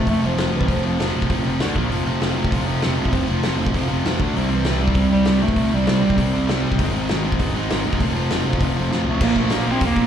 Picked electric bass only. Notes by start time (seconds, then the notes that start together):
0.08 F1
0.37 F1
0.55 C2
0.68 F1
0.84 F1
1.00 F1
1.15 F1
1.31 F1
1.43 F1
1.60 D2
1.76 A#1
1.91 F1
2.05 F1
2.21 F1
2.52 F1
2.85 F1
2.98 C2
3.13 F1
3.29 F1
3.45 F1
3.59 F1
3.75 F1
3.91 F1
4.06 E2
4.20 D2
4.36 C2
4.52 C2
4.67 C2
4.95 C2
5.28 C2
5.43 G2
5.57 C2
5.72 C2
5.88 C2
6.05 C2
6.17 C2
6.34 C2
6.51 C2
6.65 C2
6.80 G#1
6.95 G#1
7.11 G#1
7.40 G#1
7.71 G#1
7.86 D#2
8.01 F1
8.15 F1
8.31 F1
8.48 F1
8.61 F1
8.79 F1
8.94 F1
9.08 A1
9.22 A#1
9.36 A#1
9.52 A#1
9.68 A#1
9.81 F1
9.96 A#1